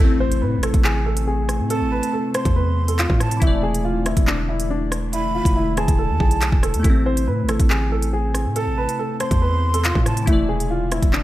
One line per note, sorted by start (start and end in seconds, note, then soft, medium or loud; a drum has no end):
0.00 0.43 A1 loud
0.00 3.38 C3 medium
0.00 3.35 A3 medium
0.00 3.38 A3 medium
0.00 3.38 C4 loud
0.00 3.40 C4 medium
0.00 3.37 E4 medium
0.00 0.18 A4 medium
0.00 impact medium
0.20 0.40 C5 medium
0.32 closed hi-hat medium
0.42 0.59 A2 loud
0.42 0.61 B4 medium
0.58 0.73 A1 loud
0.63 0.82 A4 medium
0.63 cross-stick loud
0.63 closed hi-hat medium
0.74 1.61 A1 loud
0.74 kick medium
0.74 closed hi-hat medium
0.84 1.04 G#4 medium
0.84 clap loud
1.06 1.25 A4 medium
1.17 closed hi-hat medium
1.27 1.68 G#4 medium
1.49 cross-stick medium
1.49 closed hi-hat medium
1.59 1.82 A2 loud
1.70 1.90 A4 loud
1.70 2.31 A5 loud
1.70 closed hi-hat medium
1.81 2.01 A1 loud
1.92 2.11 B4 medium
2.03 closed hi-hat medium
2.13 2.32 A4 medium
2.34 2.54 C5 medium
2.34 3.16 C6 medium
2.34 cross-stick loud
2.34 closed hi-hat medium
2.45 3.07 E2 loud
2.45 kick medium
2.45 closed hi-hat medium
2.56 2.86 B4 medium
2.88 2.98 A4 medium
2.88 closed hi-hat medium
2.99 3.18 F4 medium
2.99 clap loud
2.99 closed hi-hat medium
3.10 3.41 A2 loud
3.10 kick loud
3.20 3.41 A5 medium
3.20 cross-stick loud
3.20 closed hi-hat loud
3.31 closed hi-hat medium
3.37 6.78 E3 medium
3.37 6.80 E4 medium
3.42 4.14 E1 loud
3.42 6.81 D3 medium
3.42 11.23 A3 medium
3.42 6.78 A3 medium
3.42 3.61 E4 medium
3.42 6.81 E4 medium
3.42 kick loud
3.42 closed hi-hat medium
3.47 6.83 D5 medium
3.63 3.82 G#4 medium
3.75 closed hi-hat medium
3.85 4.04 F4 medium
4.06 4.25 E4 medium
4.06 cross-stick loud
4.06 closed hi-hat medium
4.17 5.41 E1 loud
4.17 kick medium
4.17 closed hi-hat medium
4.27 4.47 D4 loud
4.27 clap loud
4.49 4.68 E4 medium
4.60 closed hi-hat medium
4.70 5.11 D4 medium
4.92 cross-stick medium
4.92 closed hi-hat loud
5.13 5.32 E4 medium
5.13 5.74 B5 loud
5.13 closed hi-hat medium
5.35 5.54 F4 medium
5.45 5.86 E1 loud
5.45 kick medium
5.45 closed hi-hat medium
5.56 5.75 E4 medium
5.77 5.97 G#4 medium
5.77 6.81 A5 medium
5.77 cross-stick loud
5.77 closed hi-hat medium
5.88 6.11 E1 loud
5.88 kick medium
5.88 closed hi-hat medium
5.99 6.18 A4 medium
6.10 6.20 E2 loud
6.20 6.51 B1 loud
6.20 6.61 G#4 medium
6.20 kick loud
6.31 closed hi-hat medium
6.41 clap loud
6.41 closed hi-hat medium
6.52 6.75 E1 loud
6.52 kick loud
6.63 6.82 A4 medium
6.63 cross-stick medium
6.63 closed hi-hat medium
6.74 6.84 E2 loud
6.74 closed hi-hat medium
6.79 10.21 A3 medium
6.79 10.23 E4 medium
6.84 7.29 A1 loud
6.84 10.24 C3 medium
6.84 10.24 C4 medium
6.84 7.04 A4 medium
6.84 kick loud
6.84 closed hi-hat medium
6.90 10.26 C4 medium
7.06 7.25 C5 medium
7.17 closed hi-hat medium
7.27 7.45 A2 loud
7.27 7.47 B4 medium
7.43 7.59 A1 loud
7.49 7.68 A4 medium
7.49 cross-stick loud
7.49 closed hi-hat medium
7.60 8.47 A1 loud
7.60 kick medium
7.60 closed hi-hat medium
7.70 7.90 G#4 medium
7.70 clap loud
7.92 8.11 A4 medium
8.02 closed hi-hat medium
8.13 8.54 G#4 medium
8.35 cross-stick medium
8.35 closed hi-hat loud
8.45 8.68 A2 loud
8.56 8.75 A4 loud
8.56 9.17 A5 medium
8.56 closed hi-hat medium
8.67 8.87 A1 loud
8.78 8.97 B4 medium
8.89 closed hi-hat medium
8.99 9.18 A4 medium
9.20 9.40 C5 medium
9.20 10.02 C6 medium
9.20 cross-stick medium
9.20 closed hi-hat medium
9.31 9.93 E2 loud
9.31 kick medium
9.31 closed hi-hat medium
9.42 9.72 B4 medium
9.74 9.84 A4 medium
9.74 closed hi-hat medium
9.84 10.04 F4 medium
9.84 clap loud
9.84 closed hi-hat medium
9.95 10.26 A2 loud
9.95 kick loud
10.06 10.26 A5 medium
10.06 cross-stick medium
10.06 closed hi-hat loud
10.17 closed hi-hat medium
10.22 11.23 E3 medium
10.22 11.23 E4 medium
10.27 10.99 E1 loud
10.27 11.23 D3 medium
10.27 11.23 A3 medium
10.27 10.47 E4 medium
10.27 11.23 E4 loud
10.27 kick loud
10.27 closed hi-hat medium
10.33 11.23 D5 medium
10.49 10.68 G#4 medium
10.60 closed hi-hat medium
10.70 10.90 F4 medium
10.92 11.11 E4 medium
10.92 cross-stick loud
10.92 closed hi-hat medium
11.02 11.23 E1 loud
11.02 kick medium
11.02 closed hi-hat medium
11.13 11.23 D4 medium
11.13 clap loud